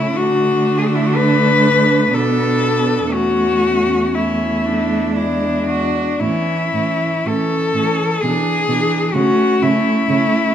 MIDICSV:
0, 0, Header, 1, 5, 480
1, 0, Start_track
1, 0, Key_signature, 3, "major"
1, 0, Tempo, 977199
1, 85, Time_signature, 3, 2, 24, 8
1, 1531, Tempo, 1029160
1, 2971, Tempo, 1063830
1, 3451, Tempo, 943396
1, 5120, End_track
2, 0, Start_track
2, 0, Title_t, "Cello"
2, 0, Program_c, 0, 42
2, 0, Note_on_c, 0, 64, 63
2, 83, Note_on_c, 0, 66, 63
2, 91, Note_off_c, 0, 64, 0
2, 384, Note_on_c, 0, 68, 47
2, 392, Note_off_c, 0, 66, 0
2, 425, Note_on_c, 0, 66, 48
2, 433, Note_off_c, 0, 68, 0
2, 468, Note_on_c, 0, 64, 50
2, 476, Note_off_c, 0, 66, 0
2, 525, Note_on_c, 0, 66, 50
2, 532, Note_off_c, 0, 64, 0
2, 569, Note_on_c, 0, 71, 66
2, 576, Note_off_c, 0, 66, 0
2, 1051, Note_on_c, 0, 69, 59
2, 1058, Note_off_c, 0, 71, 0
2, 1538, Note_on_c, 0, 66, 61
2, 1545, Note_off_c, 0, 69, 0
2, 2012, Note_on_c, 0, 64, 46
2, 2019, Note_off_c, 0, 66, 0
2, 2491, Note_off_c, 0, 64, 0
2, 2493, Note_on_c, 0, 62, 49
2, 2969, Note_on_c, 0, 64, 54
2, 2976, Note_off_c, 0, 62, 0
2, 3455, Note_on_c, 0, 69, 56
2, 3462, Note_off_c, 0, 64, 0
2, 3930, Note_on_c, 0, 68, 64
2, 3938, Note_off_c, 0, 69, 0
2, 4408, Note_on_c, 0, 66, 63
2, 4416, Note_off_c, 0, 68, 0
2, 4653, Note_on_c, 0, 64, 63
2, 4661, Note_off_c, 0, 66, 0
2, 5120, Note_off_c, 0, 64, 0
2, 5120, End_track
3, 0, Start_track
3, 0, Title_t, "Cello"
3, 0, Program_c, 1, 42
3, 0, Note_on_c, 1, 61, 38
3, 81, Note_off_c, 1, 61, 0
3, 84, Note_on_c, 1, 62, 47
3, 1023, Note_off_c, 1, 62, 0
3, 1046, Note_on_c, 1, 62, 36
3, 1531, Note_on_c, 1, 61, 35
3, 1538, Note_off_c, 1, 62, 0
3, 2007, Note_off_c, 1, 61, 0
3, 2010, Note_on_c, 1, 61, 34
3, 2248, Note_on_c, 1, 62, 37
3, 2255, Note_off_c, 1, 61, 0
3, 2485, Note_on_c, 1, 64, 37
3, 2492, Note_off_c, 1, 62, 0
3, 2726, Note_off_c, 1, 64, 0
3, 2731, Note_on_c, 1, 66, 35
3, 2967, Note_off_c, 1, 66, 0
3, 2980, Note_on_c, 1, 61, 34
3, 3212, Note_off_c, 1, 61, 0
3, 3219, Note_on_c, 1, 61, 31
3, 3449, Note_off_c, 1, 61, 0
3, 3458, Note_on_c, 1, 61, 31
3, 3698, Note_off_c, 1, 61, 0
3, 3709, Note_on_c, 1, 61, 35
3, 3940, Note_off_c, 1, 61, 0
3, 3951, Note_on_c, 1, 62, 37
3, 4177, Note_off_c, 1, 62, 0
3, 4180, Note_on_c, 1, 62, 35
3, 4414, Note_off_c, 1, 62, 0
3, 4421, Note_on_c, 1, 61, 42
3, 4646, Note_off_c, 1, 61, 0
3, 4650, Note_on_c, 1, 61, 43
3, 4886, Note_off_c, 1, 61, 0
3, 4890, Note_on_c, 1, 61, 41
3, 5120, Note_off_c, 1, 61, 0
3, 5120, End_track
4, 0, Start_track
4, 0, Title_t, "Cello"
4, 0, Program_c, 2, 42
4, 0, Note_on_c, 2, 57, 35
4, 77, Note_off_c, 2, 57, 0
4, 86, Note_on_c, 2, 57, 45
4, 1038, Note_on_c, 2, 59, 36
4, 1045, Note_off_c, 2, 57, 0
4, 1527, Note_off_c, 2, 59, 0
4, 1532, Note_on_c, 2, 57, 35
4, 2002, Note_off_c, 2, 57, 0
4, 2021, Note_on_c, 2, 57, 34
4, 2494, Note_on_c, 2, 56, 30
4, 2501, Note_off_c, 2, 57, 0
4, 2872, Note_off_c, 2, 56, 0
4, 2977, Note_on_c, 2, 52, 37
4, 3211, Note_off_c, 2, 52, 0
4, 3214, Note_on_c, 2, 52, 30
4, 3446, Note_off_c, 2, 52, 0
4, 3455, Note_on_c, 2, 52, 36
4, 3691, Note_off_c, 2, 52, 0
4, 3694, Note_on_c, 2, 52, 30
4, 3932, Note_off_c, 2, 52, 0
4, 3939, Note_on_c, 2, 52, 34
4, 4174, Note_off_c, 2, 52, 0
4, 4179, Note_on_c, 2, 52, 38
4, 4409, Note_off_c, 2, 52, 0
4, 4412, Note_on_c, 2, 57, 45
4, 4644, Note_off_c, 2, 57, 0
4, 4647, Note_on_c, 2, 57, 39
4, 4885, Note_off_c, 2, 57, 0
4, 4887, Note_on_c, 2, 57, 45
4, 5119, Note_off_c, 2, 57, 0
4, 5120, End_track
5, 0, Start_track
5, 0, Title_t, "Cello"
5, 0, Program_c, 3, 42
5, 0, Note_on_c, 3, 49, 36
5, 68, Note_off_c, 3, 49, 0
5, 89, Note_on_c, 3, 50, 47
5, 1025, Note_off_c, 3, 50, 0
5, 1047, Note_on_c, 3, 47, 41
5, 1522, Note_off_c, 3, 47, 0
5, 1534, Note_on_c, 3, 40, 39
5, 2853, Note_off_c, 3, 40, 0
5, 2972, Note_on_c, 3, 45, 38
5, 3008, Note_off_c, 3, 45, 0
5, 3211, Note_on_c, 3, 45, 36
5, 3247, Note_off_c, 3, 45, 0
5, 3446, Note_on_c, 3, 45, 37
5, 3486, Note_off_c, 3, 45, 0
5, 3693, Note_on_c, 3, 45, 37
5, 3733, Note_off_c, 3, 45, 0
5, 3941, Note_on_c, 3, 47, 42
5, 3982, Note_off_c, 3, 47, 0
5, 4173, Note_on_c, 3, 47, 40
5, 4214, Note_off_c, 3, 47, 0
5, 4406, Note_on_c, 3, 49, 48
5, 4447, Note_off_c, 3, 49, 0
5, 4650, Note_on_c, 3, 49, 50
5, 4690, Note_off_c, 3, 49, 0
5, 4887, Note_on_c, 3, 49, 47
5, 4928, Note_off_c, 3, 49, 0
5, 5120, End_track
0, 0, End_of_file